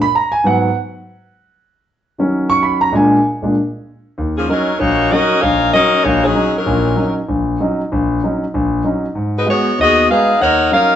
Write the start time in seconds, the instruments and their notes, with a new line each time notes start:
0.02 grand piano B5
0.15 grand piano A#5
0.32 grand piano G#5
0.44 grand piano G#2 F#3 B3 F#5
2.18 grand piano D#3 F#3 C#4
2.50 grand piano C#6
2.63 grand piano B5
2.81 grand piano A#5
2.92 grand piano A#2 G#3 D4 G#5
3.42 grand piano A#2 G#3 D4
4.18 grand piano D#2
4.37 saxophone section F3 A#3 C#4 G#4
4.48 grand piano F#3 C#4 D#4, saxophone section F#3 C#4 D#4 A#4
4.79 grand piano A#1, saxophone section A#3 D#4 F#4 C#5
5.11 grand piano F#3 C#4 D#4, saxophone section C#4 F#4 A#4 D#5
5.41 grand piano A#1, saxophone section D#4 A#4 C#5 F5
5.73 grand piano F#3 C#4 D#4, saxophone section C#4 F#4 A#4 D#5
6.04 grand piano A#1, saxophone section A#3 D#4 F#4 C#5
6.25 saxophone section F#3 C#4 D#4 G#4
6.35 grand piano F#3 C#4 D#4
6.58 saxophone section F#3 C#4 D#4 A#4
6.66 grand piano A#1 A#2
6.96 grand piano F#3 C#4 D#4
7.29 grand piano A#1
7.60 grand piano F#3 C#4 D#4
7.92 grand piano A#1
8.23 grand piano F#3 C#4 D#4
8.54 grand piano A#1
8.84 grand piano F#3 C#4 D#4
9.15 grand piano G#2
9.37 saxophone section G#3 D#4 F#4 B4
9.46 grand piano G#3 B3 F#4, saxophone section B3 F#4 G#4 C#5
9.78 grand piano D#2, saxophone section B3 F#4 G#4 D#5
10.09 grand piano G#3 B3 F#4, saxophone section D#4 G#4 B4 F5
10.41 grand piano D#2, saxophone section D#4 A#4 C#5 F#5
10.71 grand piano F#3 C#4 D#4, saxophone section D#4 A#4 C#5 F5